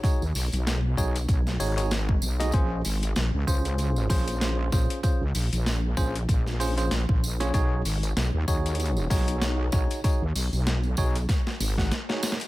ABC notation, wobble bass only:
X:1
M:4/4
L:1/16
Q:"Swing 16ths" 1/4=96
K:Cblyd
V:1 name="Wobble bass" clef=bass
z ^D,, =B,,, B,,,3 B,,,2 B,,,2 ^G,,,4 B,,,2 | B,,,2 A,,,2 B,,, D,, D,,4 B,,,4 B,,, z | z D,, B,,, B,,,3 B,,,2 B,,,4 B,,, B,,,3 | =B,,,2 ^G,,,2 B,,, ^D,, D,,4 B,,,4 B,,, z |
z ^D,, =B,,, B,,,3 B,,,2 z2 ^G,,,2 z4 |]